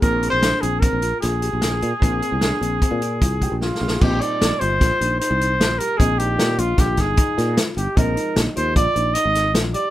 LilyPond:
<<
  \new Staff \with { instrumentName = "Trumpet" } { \time 5/4 \key aes \lydian \tempo 4 = 151 bes'8. c''8. aes'8 bes'4 aes'2~ | aes'1 f'4 | g'8 d''4 c''4. c''4. bes'8 | aes'8 g'4 f'8 g'8 aes'4. r8 g'8 |
bes'4 r8 c''8 d''4 ees''4 r8 d''8 | }
  \new Staff \with { instrumentName = "Tine electric piano" } { \time 5/4 \key aes \lydian c'4 d'8 c'8 c'8 f'4 g'8 f'8 aes'8 | c'4 d'8 c'8 c'8 f'4 g'8 f'8 aes'8 | c'8 ees'4 f'8 f'8 ees'8 ees'4 f'8 g'8 | c'8 ees'4 f'8 f'8 ees'8 ees'4 f'8 g'8 |
c'8 ees'4 f'8 f'8 ees'8 ees'4 f'8 g'8 | }
  \new Staff \with { instrumentName = "Grand piano" } { \time 5/4 \key aes \lydian r1 r4 | r2. r8 g''8 f''8 f''8 | r1 r4 | r1 r4 |
r1 r4 | }
  \new Staff \with { instrumentName = "Grand piano" } { \time 5/4 \key aes \lydian <bes, bes f' aes'>1~ <bes, bes f' aes'>4 | <bes, bes f' aes'>2.~ <bes, bes f' aes'>8 <bes, bes f' aes'>4. | <bes, g c' ees'>1~ <bes, g c' ees'>4 | <bes, aes c' ees'>1~ <bes, aes c' ees'>4 |
<f aes ees'>1~ <f aes ees'>4 | }
  \new Staff \with { instrumentName = "Fretless electric bass" } { \clef bass \time 5/4 \key aes \lydian bes,,8. bes,,8 r16 bes,,8. bes,,8 r16 bes,,8. bes,,8. bes,16 r16 | bes,,8 r16 c,8 r16 bes,,8 r16 bes,8. c,8. bes,,8 r16 bes,,8 | bes,,8 r8 bes,,16 r16 g,,8 bes,,16 r16 bes,,8 r16 c,8. bes,,8 r8 | bes,,4 bes,8 bes,,8 bes,,8 g,,8 r8 bes,8 r8 g,,16 r16 |
bes,,8 r8 bes,,16 r16 ees,8 bes,,16 r16 bes,,8 r16 aes,,8. bes,,8 r8 | }
  \new DrumStaff \with { instrumentName = "Drums" } \drummode { \time 5/4 <hh bd>8 hh8 <hh sn>8 hh8 <hh bd>8 hh8 <hh sn>8 hh8 <hh sn>8 hh8 | <hh bd>8 hh8 <hh sn>8 hh8 <hh bd>8 hh8 <hh bd>8 <hh bd>8 \tuplet 3/2 { sn8 sn8 sn8 } | <cymc bd>8 hh8 <hh sn>8 hh8 <hh bd sn>8 hh8 hh8 hh8 <hh sn>8 hh8 | <hh bd>8 hh8 <hh sn>8 hh8 <hh bd sn>8 <hh bd sn>8 <hh bd>8 <hh sn>8 <hh sn>8 hh8 |
<hh bd>8 hh8 <hh sn>8 hh8 <hh bd>8 hh8 hh8 <hh sn>8 <hh sn>8 hh8 | }
>>